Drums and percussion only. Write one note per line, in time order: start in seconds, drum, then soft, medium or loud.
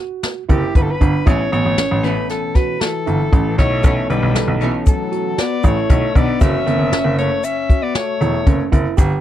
0.23 snare medium
0.23 closed hi-hat medium
0.49 kick medium
0.49 closed hi-hat medium
0.75 kick medium
0.75 closed hi-hat medium
1.01 kick medium
1.01 closed hi-hat medium
1.27 kick loud
1.27 closed hi-hat medium
1.52 closed hi-hat medium
1.78 snare loud
1.78 closed hi-hat medium
2.04 snare soft
2.04 closed hi-hat medium
2.29 snare soft
2.29 closed hi-hat medium
2.55 kick medium
2.55 snare soft
2.55 closed hi-hat medium
2.81 snare medium
2.81 closed hi-hat medium
3.07 closed hi-hat medium
3.33 kick medium
3.33 closed hi-hat medium
3.58 kick medium
3.58 snare soft
3.58 closed hi-hat medium
3.84 kick loud
3.84 closed hi-hat medium
3.84 shaker soft
4.10 closed hi-hat medium
4.35 snare loud
4.35 closed hi-hat medium
4.61 closed hi-hat medium
4.87 kick medium
4.87 closed hi-hat medium
4.87 shaker medium
5.12 closed hi-hat medium
5.38 snare medium
5.38 closed hi-hat medium
5.64 kick medium
5.64 closed hi-hat medium
5.64 shaker soft
5.90 kick medium
5.90 closed hi-hat medium
6.15 kick medium
6.15 closed hi-hat medium
6.41 kick loud
6.41 closed hi-hat medium
6.41 shaker soft
6.67 snare soft
6.67 closed hi-hat medium
6.92 snare loud
6.92 closed hi-hat medium
7.18 closed hi-hat medium
7.44 closed hi-hat medium
7.44 shaker medium
7.70 kick medium
7.70 closed hi-hat medium
7.95 snare loud
7.95 closed hi-hat medium
8.21 closed hi-hat medium
8.46 kick medium
8.46 closed hi-hat medium
8.72 kick medium
8.72 closed hi-hat medium
8.98 kick loud
8.98 closed hi-hat medium
8.98 shaker medium